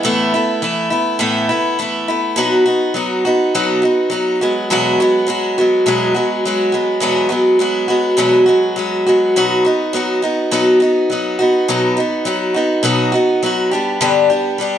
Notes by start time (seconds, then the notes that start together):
0.03 A2 E3 A3 B3 E4
0.34 A3 B3 E4
0.62 E3 A3 B3 E4
0.90 A3 B3 E4
1.19 A2 E3 A3 B3 E4
1.49 A3 B3 E4
1.79 E3 A3 B3 E4
2.08 A3 B3 E4
2.36 B2 F#3 B3 D#4 F#4
2.66 B3 D#4 F#4
2.94 F#3 B3 D#4 F#4
3.25 B3 D#4 F#4
3.55 B2 F#3 B3 D#4 F#4
3.82 B3 D#4 F#4
4.10 F#3 B3 D#4 F#4
4.41 F#3 G#3 B3 F#4
4.70 E2 B2 F#3 G#3 B3 F#4
5.00 F#3 G#3 B3 F#4
5.27 F#3 G#3 B3 F#4
5.58 F#3 G#3 B3 F#4
5.86 E2 B2 F#3 G#3 B3 F#4
6.15 F#3 G#3 B3 F#4
6.45 F#3 G#3 B3 F#4
6.72 F#3 G#3 B3 F#4
7.00 E2 B2 F#3 G#3 B3 F#4
7.29 F#3 G#3 B3 F#4
7.59 F#3 G#3 B3 F#4
7.88 F#3 G#3 B3 F#4
8.17 E2 B2 F#3 G#3 B3 F#4
8.46 F#3 G#3 B3 F#4
8.76 F#3 G#3 B3 F#4
9.06 F#3 G#3 B3 F#4
9.36 B2 F#3 B3 D#4 F#4
9.65 B3 D#4 F#4
9.93 F#3 B3 D#4 F#4
10.22 B3 D#4 F#4
10.51 B2 F#3 B3 D#4 F#4
10.80 B3 D#4 F#4
11.10 F#3 B3 D#4 F#4
11.39 B3 D#4 F#4
11.68 B2 F#3 B3 D#4 F#4
11.97 B3 D#4 F#4
12.25 F#3 B3 D#4 F#4
12.54 B3 D#4 F#4
12.83 B2 F#3 B3 D#4 F#4
13.12 B3 D#4 F#4
13.43 F#3 B3 D#4 F#4
13.71 G3 B3 D4 G4
14.01 G2 D3 G3 B3 D4 G4
14.30 G3 B3 D4 G4
14.58 G3 B3 D4 G4